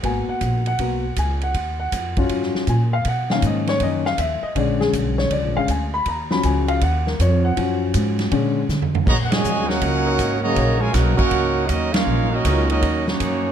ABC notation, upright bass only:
X:1
M:4/4
L:1/8
Q:"Swing" 1/4=160
K:Abdor
V:1 name="Upright bass" clef=bass
A,,, z B,,,2 C,,2 D,,2 | E,,2 F,,2 G,, z B,,2 | =B,,2 A,,2 ^F,,2 ^D,, z | B,,,2 C,,2 (3^C,, B,,, A,,, =D,,2 |
E,,2 D,,2 E,,2 F,,2 | G,,2 A,,2 B,,2 =D,2 | B,,2 E,,2 D,,2 A,,,2 | B,,,2 C,, z D,,2 E,,2 |
B,,,2 D,,2 E,,2 G,,2 |]